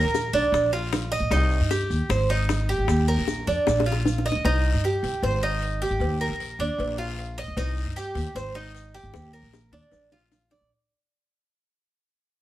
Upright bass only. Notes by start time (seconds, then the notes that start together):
0.04 A#1
0.33 B1
0.52 A#1
1.20 A#1
1.30 C2
1.61 G2
1.90 D#2
2.09 G#1
2.78 G#1
2.88 D#2
3.18 A#1
3.47 F2
3.67 A#1
4.35 B1
4.44 C2
4.74 G2
5.03 C2
5.22 G#1
5.90 G#1
6.00 D#2
6.29 A#1
6.59 D#2
6.78 A#1
7.48 A#1
7.57 C2
7.86 G2
8.15 D#2
8.35 G#1
9.03 G#1
9.14 D#2
9.43 A#1
9.72 D#2
9.92 A#1
10.61 A#1